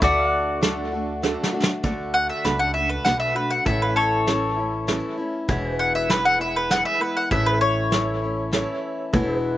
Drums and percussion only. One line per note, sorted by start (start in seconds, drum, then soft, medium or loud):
0.02 kick loud
0.02 closed hi-hat medium
0.62 snare medium
0.62 closed hi-hat medium
1.23 snare medium
1.43 snare medium
1.63 snare loud
1.84 kick loud
1.84 closed hi-hat medium
2.45 snare medium
2.45 closed hi-hat medium
3.05 snare medium
3.05 closed hi-hat medium
3.66 kick loud
3.66 closed hi-hat medium
4.27 snare medium
4.27 closed hi-hat medium
4.88 snare medium
4.88 closed hi-hat medium
5.49 kick loud
5.49 closed hi-hat medium
6.10 snare medium
6.10 closed hi-hat medium
6.71 snare medium
6.71 closed hi-hat medium
7.31 kick loud
7.31 closed hi-hat medium
7.92 snare medium
7.92 closed hi-hat medium
8.53 snare medium
8.53 closed hi-hat medium
9.14 kick loud
9.14 closed hi-hat medium